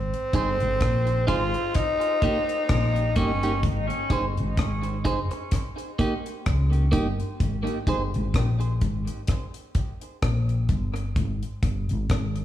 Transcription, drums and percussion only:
0.14 closed hi-hat
0.33 kick, closed hi-hat
0.60 closed hi-hat
0.81 kick, cross-stick, closed hi-hat
1.07 closed hi-hat
1.28 kick, closed hi-hat
1.54 closed hi-hat
1.74 kick, cross-stick, closed hi-hat
2.01 closed hi-hat
2.22 kick, closed hi-hat
2.49 closed hi-hat
2.69 kick, cross-stick, closed hi-hat
2.96 closed hi-hat
3.16 kick, closed hi-hat
3.43 closed hi-hat
3.63 kick, closed hi-hat
3.90 closed hi-hat
4.10 kick, closed hi-hat
4.37 closed hi-hat
4.57 kick, cross-stick, closed hi-hat
4.83 closed hi-hat
5.05 kick, closed hi-hat
5.31 closed hi-hat
5.51 kick, cross-stick, closed hi-hat
5.78 closed hi-hat
5.99 kick, closed hi-hat
6.26 closed hi-hat
6.46 kick, cross-stick, closed hi-hat
6.73 closed hi-hat
6.93 kick, closed hi-hat
7.20 closed hi-hat
7.40 kick, closed hi-hat
7.67 closed hi-hat
7.87 kick, closed hi-hat
8.14 closed hi-hat
8.34 kick, cross-stick, closed hi-hat
8.60 closed hi-hat
8.81 kick, closed hi-hat
9.07 closed hi-hat
9.27 kick, cross-stick, closed hi-hat
9.54 closed hi-hat
9.75 kick, closed hi-hat
10.01 closed hi-hat
10.22 kick, cross-stick, closed hi-hat
10.49 closed hi-hat
10.69 kick, closed hi-hat
10.96 closed hi-hat
11.16 kick, closed hi-hat
11.43 closed hi-hat
11.63 kick, closed hi-hat
11.89 closed hi-hat
12.10 kick, cross-stick, closed hi-hat
12.36 closed hi-hat

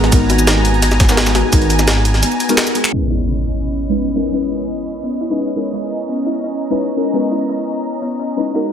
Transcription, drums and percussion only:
0.04 snare, closed hi-hat
0.12 kick, closed hi-hat, ride, shaker
0.30 closed hi-hat, ride, shaker
0.39 shaker
0.47 snare, closed hi-hat, ride, shaker
0.65 closed hi-hat, ride
0.74 closed hi-hat
0.82 snare, closed hi-hat, ride, shaker
0.92 snare, shaker
1.00 kick, snare, closed hi-hat, ride, shaker
1.09 snare, closed hi-hat, shaker
1.17 snare, closed hi-hat, ride
1.27 snare, closed hi-hat, shaker
1.35 snare, closed hi-hat, ride
1.53 kick, closed hi-hat, ride, shaker
1.62 closed hi-hat
1.70 closed hi-hat, ride, shaker
1.79 snare, shaker
1.88 snare, closed hi-hat, ride, shaker
1.97 snare
2.05 closed hi-hat, ride
2.14 snare, closed hi-hat
2.23 closed hi-hat, ride, shaker
2.32 shaker
2.40 closed hi-hat, ride, shaker
2.49 closed hi-hat, shaker
2.58 snare, clap, closed hi-hat, ride
2.67 closed hi-hat, shaker
2.75 closed hi-hat, ride, shaker
2.84 clap, closed hi-hat
2.93 crash

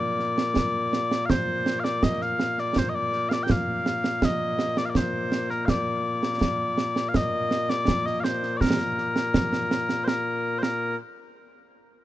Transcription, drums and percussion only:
0.19 snare
0.38 snare
0.56 concert bass drum, snare
0.93 snare
1.11 snare
1.30 concert bass drum, snare
1.66 snare
1.85 snare
2.03 concert bass drum, snare
2.21 snare
2.39 snare
2.58 snare
2.76 concert bass drum, snare
3.13 snare
3.31 snare
3.50 concert bass drum, snare
3.86 snare
4.04 snare
4.22 concert bass drum, snare
4.59 snare
4.77 snare
4.95 concert bass drum, snare
5.32 snare
5.50 snare
5.68 concert bass drum, snare
6.23 snare
6.41 concert bass drum, snare
6.78 snare
6.96 snare
7.14 concert bass drum, snare
7.51 snare
7.70 snare
7.88 concert bass drum, snare
8.07 snare
8.24 snare
8.43 snare
8.61 concert bass drum, snare
8.80 snare
8.98 snare
9.16 snare
9.34 concert bass drum, snare
9.53 snare
9.71 snare
9.89 snare
10.08 snare
10.63 snare

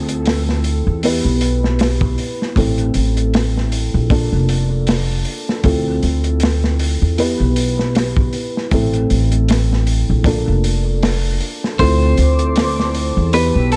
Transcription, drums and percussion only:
0.09 closed hi-hat
0.26 snare, open hi-hat
0.49 snare
0.64 open hi-hat
1.03 open hi-hat
1.41 open hi-hat
1.64 snare
1.79 snare, open hi-hat
2.01 kick
2.18 open hi-hat
2.42 snare
2.56 kick, open hi-hat
2.78 closed hi-hat
2.94 open hi-hat
3.17 closed hi-hat
3.34 snare, open hi-hat
3.57 snare
3.72 open hi-hat
4.10 kick, open hi-hat
4.49 open hi-hat
4.87 snare, open hi-hat
5.25 open hi-hat
5.49 snare
5.64 kick, open hi-hat
6.03 open hi-hat
6.24 closed hi-hat
6.40 snare, open hi-hat
6.64 snare
6.79 open hi-hat
7.18 open hi-hat
7.56 open hi-hat
7.79 snare
7.95 snare, open hi-hat
8.17 kick
8.33 open hi-hat
8.57 snare
8.71 kick, open hi-hat
8.93 closed hi-hat
9.10 open hi-hat
9.32 closed hi-hat
9.48 snare, open hi-hat
9.73 snare
9.87 open hi-hat
10.24 kick, open hi-hat
10.64 open hi-hat
11.03 snare, open hi-hat
11.40 open hi-hat
11.64 snare
11.79 kick, open hi-hat
12.17 open hi-hat
12.39 closed hi-hat
12.56 snare, open hi-hat
12.80 snare
12.94 open hi-hat
13.33 open hi-hat
13.72 open hi-hat

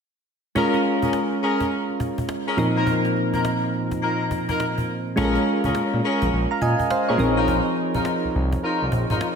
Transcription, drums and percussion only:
0.56 cajon bass
0.74 cajon slap
0.84 cajon slap
1.02 cajon bass
1.13 cajon slap
1.32 cajon slap
1.42 cajon slap
1.60 cajon bass, cajon slap
1.71 cajon slap
1.89 cajon slap
2.00 cajon bass
2.18 cajon bass
2.29 cajon slap
2.47 cajon slap
2.58 cajon bass
2.76 cajon slap
2.87 cajon bass
3.05 cajon slap
3.16 cajon slap
3.34 cajon bass
3.45 cajon slap
3.63 cajon slap
3.73 cajon slap
3.91 cajon bass, cajon slap
4.20 cajon slap
4.31 cajon bass
4.49 cajon bass
4.60 cajon slap
4.78 cajon bass
4.89 cajon slap
5.07 cajon slap
5.17 cajon bass
5.35 cajon slap
5.46 cajon slap
5.64 cajon bass
5.75 cajon slap
5.93 cajon slap
6.03 cajon slap
6.22 cajon bass, cajon slap
6.32 cajon slap
6.50 cajon slap
6.61 cajon bass
6.80 cajon bass
6.90 cajon slap
7.08 cajon slap
7.19 cajon bass
7.37 cajon slap
7.48 cajon bass
7.66 cajon slap
7.77 cajon slap
7.95 cajon bass
8.05 cajon slap
8.24 cajon slap
8.34 cajon slap
8.52 cajon bass, cajon slap
8.81 cajon slap
8.92 cajon bass
9.10 cajon bass
9.21 cajon slap

